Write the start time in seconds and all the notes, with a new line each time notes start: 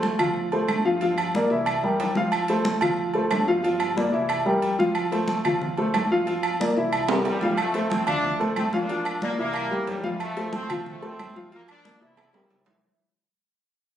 Already playing: F2 A3 A4 C5
0.03 high conga, low agogo
0.19 D2 F3 F4 F5, high conga, low conga, low agogo, claves
0.37 high conga
0.52 A3 A4 C5, high conga, low agogo
0.68 G1, high conga, low agogo, claves
0.85 F3 F4 F5
1.01 F3 F4 F5, high conga, low agogo
1.18 high conga, low agogo, claves
1.35 A#3 A#4 D5, high conga
1.50 C2 E3 E4 E5
1.66 high conga, low agogo, claves
1.83 E2 G3 G4 A#4, high conga
2.00 F2, high conga, low timbale, low agogo
2.15 F3 F4 F5, high conga
2.32 high conga, low agogo, claves
2.48 A3 A4 C5, high conga, low agogo
2.65 high conga, low agogo
2.81 D2 F3 F4 F5, high conga, low conga, low agogo, claves
2.98 high conga
3.14 A3 A4 C5, high conga, low agogo
3.31 G1, high conga, low timbale, low agogo, claves
3.48 F3 F4 F5
3.63 F3 F4 F5, high conga, low agogo
3.80 high conga, low agogo, claves
3.96 A#3 A#4 D5, high conga
4.12 C2 E3 E4 E5
4.29 high conga, low agogo, claves
4.46 E2 G3 G4 A#4, high conga
4.62 F2, high conga, low agogo
4.79 F3 F4 F5, high conga
4.95 high conga, low agogo, claves
5.12 A3 A4 C5, high conga, low agogo
5.28 high conga, low agogo
5.44 D2 F3 F4 F5, high conga, low conga, low agogo, claves
5.61 high conga, low conga
5.77 A3 A4 C5, high conga, low agogo
5.94 G1, high conga, low timbale, low agogo, claves
6.11 F3 F4 F5
6.27 F3 F4 F5, high conga, low agogo
6.43 high conga, low agogo, claves
6.60 A#3 A#4 D5, high conga
6.76 C2 E3 E4 E5
6.93 high conga, low agogo, claves
7.08 G3 G4 A#4, high conga, high timbale
7.25 F2 E3 G3, high conga, high timbale, low agogo
7.41 F3 F4 F5, high conga, low timbale
7.57 F2 F3 A3, high conga, low agogo, claves
7.74 A3 A4 C5, high conga, low agogo
7.90 A3 C4, high conga, low agogo
8.07 D2 F3 A3 D4 F4 F5, high conga, low conga, low agogo, claves
8.24 high conga, low conga
8.40 A3 A4 C5, high conga, low agogo
8.56 G1 A3 C4, high conga, low agogo, claves
8.73 F3 A#3 D4 F4 F5, high conga
8.89 F3 F4 F5, high conga, low agogo
9.05 high conga, low agogo, claves
9.22 G3 A#3 A#4 D5, high conga
9.38 C2 E3 G3 A#3 E4 E5
9.54 high conga, low agogo, claves
9.71 E2 G3 G4 A#4, high conga
9.87 F2 E3 G3, high conga, low timbale, low agogo
10.03 F3 F4 F5, high conga
10.20 F3 A3, high conga, low agogo, claves
10.37 A3 A4 C5, high conga, low agogo
10.53 A3 C4, high conga, low agogo
10.70 D2 F3 F4 F5, high conga, low conga, low agogo, claves
10.86 F3 A3, high conga, low conga
11.02 A3 C4 A4 C5, high conga, low agogo
11.19 G1, high conga, low timbale, low agogo, claves
11.36 F3 F4 F5, high conga
11.51 F3 G3 A#3 F4 F5, high conga, low agogo
11.68 A#3 D4, high conga, low agogo, claves
11.84 A#3 A#4 D5, high conga
12.01 C2 E3 C4 E4 E5
12.17 high conga, high timbale, low agogo, claves
12.33 A#1 G3 G4 A#4, high timbale
12.50 C2, high conga, low timbale, low agogo
12.66 E3 E4 E5, high conga, low timbale